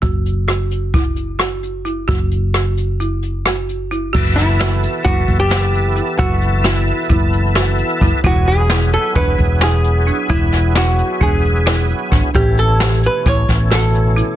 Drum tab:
CC |---------|---------|x--------|---------|
HH |xxxxxxxxx|xxxxxxxxx|-xxxxxxxx|xxxxxxxxx|
SD |--r---r--|--r---r--|-oo---o--|--o---o--|
BD |o---o----|o--------|o---oo---|o---o---o|

CC |---------|---------|---------|
HH |xxxxxxxxx|xxxxxxxxx|xxxxxxxxx|
SD |--o---o--|-oo---o-o|--o-ooo--|
BD |o---oo---|o---o---o|o---oo---|